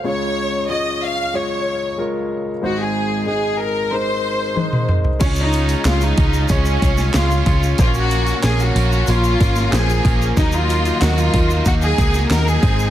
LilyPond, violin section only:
\new Staff \with { instrumentName = "Violin section" } { \time 4/4 \key des \major \tempo 4 = 93 des''4 ees''8 f''8 des''4 r4 | ges'16 aes'8. aes'8 bes'8 c''4. r8 | des'16 ees'8. f'16 ees'8. des'4 f'8. r16 | f'16 ges'8. aes'16 ges'8. f'4 aes'8. r16 |
ees'16 f'8. ges'16 f'8. ges'16 aes'8. bes'16 aes'8. | }